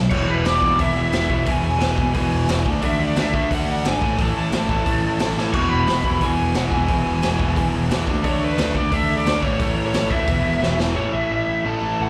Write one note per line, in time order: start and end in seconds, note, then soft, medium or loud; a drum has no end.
0.00 0.11 B2 medium
0.00 0.11 F#3 medium
0.10 0.27 E1 loud
0.10 0.44 E2 loud
0.10 0.44 B2 medium
0.10 0.45 E3 loud
0.10 0.28 C#5 loud
0.10 kick loud
0.10 crash loud
0.28 0.44 E1 loud
0.28 0.45 B4 medium
0.44 0.60 E1 medium
0.44 0.62 E2 medium
0.44 0.62 B2 medium
0.44 0.61 E3 medium
0.44 0.79 D5 medium
0.44 snare loud
0.44 open hi-hat medium
0.62 0.78 E1 loud
0.62 0.77 E2 medium
0.62 0.77 B2 medium
0.62 0.77 E3 loud
0.62 kick medium
0.78 0.95 E1 loud
0.78 1.11 E2 loud
0.78 1.11 B2 loud
0.78 1.12 E3 medium
0.78 0.96 E5 medium
0.78 kick loud
0.78 open hi-hat medium
0.95 1.11 E1 medium
0.95 1.13 E5 medium
1.12 1.28 E1 loud
1.12 1.29 E2 medium
1.12 1.28 B2 medium
1.12 1.28 E3 medium
1.12 1.48 E5 medium
1.12 snare loud
1.12 open hi-hat medium
1.29 1.45 E1 loud
1.29 1.44 E2 medium
1.29 1.45 B2 medium
1.29 1.45 E3 medium
1.29 kick medium
1.46 1.62 E1 loud
1.46 1.78 E2 loud
1.46 1.79 B2 loud
1.46 1.80 E3 loud
1.46 1.63 G#5 loud
1.46 kick loud
1.46 open hi-hat medium
1.63 1.79 E1 medium
1.63 2.62 G#5 loud
1.79 1.96 E1 loud
1.79 1.96 E2 medium
1.79 1.96 B2 medium
1.79 1.95 E3 medium
1.79 snare loud
1.79 open hi-hat medium
1.96 2.13 E1 loud
1.96 2.11 E2 medium
1.96 2.12 B2 loud
1.96 2.12 E3 loud
1.96 kick medium
2.12 2.30 E1 loud
2.12 2.46 E2 loud
2.12 2.47 B2 loud
2.12 2.48 E3 loud
2.12 kick loud
2.12 open hi-hat medium
2.31 2.47 E1 medium
2.47 2.63 E1 loud
2.47 2.64 E2 medium
2.47 2.64 B2 medium
2.47 2.65 E3 loud
2.47 snare loud
2.47 open hi-hat medium
2.66 2.81 D2 loud
2.66 2.82 D3 medium
2.66 2.83 A3 loud
2.66 2.81 D4 loud
2.66 kick medium
2.82 2.98 D2 loud
2.82 3.17 D3 medium
2.82 3.17 A3 medium
2.82 3.16 D4 loud
2.82 3.02 E5 loud
2.82 kick loud
2.82 open hi-hat medium
2.99 3.15 D2 loud
2.99 3.19 D5 medium
3.16 3.31 D2 medium
3.16 3.33 D3 medium
3.16 3.35 A3 medium
3.16 3.34 D4 medium
3.16 3.53 E5 loud
3.16 snare loud
3.16 open hi-hat medium
3.34 3.49 D2 loud
3.34 3.51 D3 loud
3.34 3.50 A3 loud
3.34 3.49 D4 loud
3.34 kick medium
3.50 3.66 D2 loud
3.50 3.84 D3 medium
3.50 3.84 A3 medium
3.50 3.83 D4 loud
3.50 3.69 F#5 loud
3.50 kick loud
3.50 open hi-hat medium
3.66 3.82 D2 medium
3.71 3.85 F#5 medium
3.84 4.00 G#1 loud
3.84 4.00 D3 medium
3.84 4.00 A3 medium
3.84 4.00 D4 medium
3.84 snare loud
3.84 open hi-hat medium
3.88 4.21 G#5 loud
4.02 4.17 A1 medium
4.02 4.18 A2 medium
4.02 4.19 E3 loud
4.02 4.16 A3 loud
4.02 kick loud
4.18 4.34 A1 loud
4.18 4.52 A2 medium
4.18 4.53 E3 medium
4.18 4.51 A3 loud
4.18 kick loud
4.18 open hi-hat medium
4.22 4.37 A5 loud
4.35 4.51 A1 medium
4.35 5.34 A5 loud
4.52 4.67 A1 medium
4.52 4.68 A2 medium
4.52 4.70 E3 medium
4.52 4.70 A3 medium
4.52 snare loud
4.52 open hi-hat medium
4.69 4.84 A1 loud
4.69 4.87 A2 medium
4.69 4.87 E3 loud
4.69 4.85 A3 loud
4.69 kick medium
4.86 5.01 A1 medium
4.86 5.21 A2 medium
4.86 5.21 E3 loud
4.86 5.19 A3 loud
4.86 kick loud
4.86 open hi-hat medium
5.03 5.18 A1 medium
5.19 5.36 A1 medium
5.19 5.35 A2 medium
5.19 5.37 E3 medium
5.19 5.37 A3 medium
5.19 snare loud
5.19 open hi-hat medium
5.36 5.52 A1 medium
5.36 5.52 A2 medium
5.36 5.55 E3 medium
5.36 5.53 A3 medium
5.36 snare medium
5.53 5.69 E1 loud
5.53 5.87 E2 medium
5.53 5.87 B2 loud
5.53 5.88 E3 loud
5.53 5.69 C#6 loud
5.53 kick loud
5.53 crash loud
5.70 5.85 E1 loud
5.70 6.22 B5 loud
5.87 6.02 E1 medium
5.87 6.04 E2 medium
5.87 6.03 B2 medium
5.87 6.02 E3 medium
5.87 snare loud
5.87 open hi-hat medium
6.03 6.20 E1 loud
6.03 6.19 E2 medium
6.03 6.20 B2 medium
6.03 6.21 E3 loud
6.03 kick medium
6.20 6.36 E1 loud
6.20 6.54 E2 loud
6.20 6.55 B2 loud
6.20 6.55 E3 loud
6.20 6.56 G#5 loud
6.20 kick loud
6.20 open hi-hat medium
6.38 6.54 E1 medium
6.54 6.70 E1 loud
6.54 6.71 E2 medium
6.54 6.70 B2 medium
6.54 6.70 E3 loud
6.54 6.61 F#5 loud
6.54 snare loud
6.54 open hi-hat medium
6.70 6.87 E1 medium
6.70 6.87 E2 medium
6.70 6.88 B2 medium
6.70 6.89 E3 loud
6.70 7.68 G#5 medium
6.70 kick medium
6.88 7.04 E1 loud
6.88 7.21 E2 loud
6.88 7.21 B2 medium
6.88 7.22 E3 loud
6.88 kick loud
6.88 open hi-hat medium
7.05 7.21 E1 medium
7.22 7.38 E1 medium
7.22 7.39 E2 medium
7.22 7.39 B2 medium
7.22 7.38 E3 medium
7.22 snare loud
7.22 open hi-hat medium
7.39 7.55 E1 loud
7.39 7.55 E2 medium
7.39 7.55 B2 medium
7.39 7.56 E3 loud
7.39 kick medium
7.56 7.72 E1 loud
7.56 7.88 E2 medium
7.56 7.89 B2 loud
7.56 7.89 E3 loud
7.56 kick loud
7.56 open hi-hat medium
7.74 7.89 E1 loud
7.89 8.05 E2 medium
7.89 8.06 E2 medium
7.89 8.05 B2 medium
7.89 8.06 E3 medium
7.89 snare loud
7.89 open hi-hat medium
8.06 8.23 D2 loud
8.06 8.23 D3 medium
8.06 8.22 A3 loud
8.06 8.22 D4 loud
8.06 kick medium
8.23 8.40 D2 loud
8.23 8.57 D3 medium
8.23 8.57 A3 medium
8.23 8.56 D4 loud
8.23 8.44 C#5 loud
8.23 kick loud
8.23 open hi-hat medium
8.41 8.56 D2 medium
8.41 8.76 B4 medium
8.57 8.73 D2 loud
8.57 8.74 D3 medium
8.57 8.73 A3 medium
8.57 8.75 D4 medium
8.57 snare loud
8.57 open hi-hat medium
8.74 8.90 D2 loud
8.74 8.92 D3 loud
8.74 8.91 A3 loud
8.74 8.90 D4 loud
8.74 8.93 D5 loud
8.74 kick medium
8.91 9.07 D2 loud
8.91 9.25 D3 loud
8.91 9.24 A3 loud
8.91 9.24 D4 loud
8.91 9.16 E5 loud
8.91 kick loud
8.91 open hi-hat medium
9.10 9.25 D2 medium
9.17 9.41 D5 medium
9.25 9.41 D2 loud
9.25 9.40 D3 medium
9.25 9.41 A3 medium
9.25 9.41 D4 medium
9.25 snare loud
9.25 open hi-hat medium
9.40 9.58 A1 medium
9.40 9.59 A2 loud
9.40 9.59 E3 loud
9.40 9.58 A3 loud
9.40 9.84 C#5 loud
9.40 kick medium
9.59 9.75 A1 loud
9.59 9.94 A2 medium
9.59 9.94 E3 loud
9.59 9.93 A3 loud
9.59 kick loud
9.59 open hi-hat medium
9.77 9.92 A1 medium
9.86 10.10 C#5 loud
9.94 10.10 A1 medium
9.94 10.09 A2 medium
9.94 10.09 E3 medium
9.94 10.10 A3 medium
9.94 snare loud
9.94 open hi-hat medium
10.10 10.27 D2 loud
10.10 10.26 A2 medium
10.10 10.27 E3 loud
10.10 10.27 A3 medium
10.10 10.75 E5 loud
10.10 kick medium
10.27 10.43 E1 loud
10.27 10.59 E2 medium
10.27 10.60 B2 medium
10.27 10.60 E3 loud
10.27 kick loud
10.27 open hi-hat medium
10.45 10.61 E1 medium
10.60 10.77 E1 medium
10.60 10.78 E2 medium
10.60 10.77 B2 medium
10.60 10.76 E3 medium
10.60 snare medium
10.77 10.94 E1 loud
10.77 10.95 E2 medium
10.77 10.92 B2 medium
10.77 10.94 E3 loud
10.77 snare loud
10.92 11.06 A1 loud
10.92 11.83 A2 medium
10.92 11.82 E3 medium
10.92 11.80 A3 medium
10.92 11.13 C#5 medium
11.13 11.24 A1 medium
11.13 11.31 E5 medium
11.31 11.41 A1 medium
11.31 11.63 E5 loud
11.48 11.58 A1 medium
11.64 11.75 A1 loud
11.64 12.10 A2 medium
11.64 12.10 E3 medium
11.64 12.10 A3 medium
11.64 11.97 A5 loud
11.80 11.92 A1 medium
11.80 11.97 A2 medium
11.80 12.00 E3 medium
11.80 12.01 A3 medium
11.98 12.10 A1 medium
11.98 12.10 A2 medium
11.98 12.10 E3 medium
11.98 12.10 A3 medium
12.02 12.10 F#5 loud